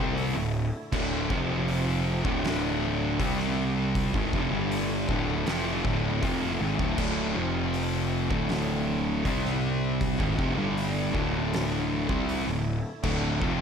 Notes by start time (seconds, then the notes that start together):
Already playing: C3 D3 A3 E4
0.00 C2 G3 C4
0.17 open hi-hat
0.35 D1 D2 A2
0.92 D1 D2 A2 D3, kick, crash
1.30 F1 F2 C3 F3 C4 G4, kick
1.68 open hi-hat
2.24 D1 D2 A2 D3 A3 E4, kick
2.45 snare, open hi-hat
3.19 C2 C3 G3 C4 D4, kick, open hi-hat
3.40 snare
3.95 kick, open hi-hat
4.14 G#1 G#2 D3 D#3 A3 E4, kick
4.33 F1 F2 C3, kick
4.51 G1 G2 D3 G3
4.72 open hi-hat
5.08 D1 D2 A2 D3, kick
5.47 F1 F2 C3 F3, snare, open hi-hat
5.85 D1 D2 A2 D3, kick
6.23 F1 F2 C3 F3, kick, open hi-hat
6.60 G#1 G#2 D#3
6.79 D1 D2 A2, kick
6.98 D1 D2 A2 D3, kick, crash
7.35 F1 F2 C3 F3 C4 G4
7.74 open hi-hat
8.31 D1 D2 A2 D3 A3 E4, kick
8.49 snare, open hi-hat
9.24 C2 C3 G3 C4 D4, kick, open hi-hat
9.45 snare
10.01 kick, open hi-hat
10.19 G#1 G#2 D3 D#3 A3 E4, kick
10.38 F1 F2 C3, kick
10.56 G1 G2 D3 G3
10.78 open hi-hat
11.13 D1 D2 A2 D3, kick
11.53 snare, open hi-hat
12.07 C2 C3 G3 C4, kick
12.29 open hi-hat
12.47 D1 D2 A2
13.03 D1 D2 A2 D3, kick, crash
13.41 F1 F2 C3 F3 C4 G4, kick